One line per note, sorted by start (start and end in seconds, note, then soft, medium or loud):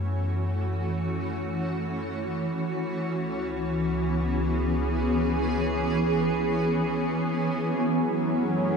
0.00 2.78 F#2 medium
0.00 8.77 E3 medium
0.00 2.82 A3 medium
0.00 7.50 C#4 medium
0.00 4.70 F#4 medium
0.00 7.49 C#5 medium
2.82 7.45 C#2 medium
3.28 8.77 B3 medium
3.87 8.77 G#4 medium
7.47 8.77 F#2 medium
7.47 8.77 F#3 medium
7.47 8.77 C#4 medium
7.70 8.77 A3 medium
7.92 8.77 C#5 medium
8.20 8.77 C#4 medium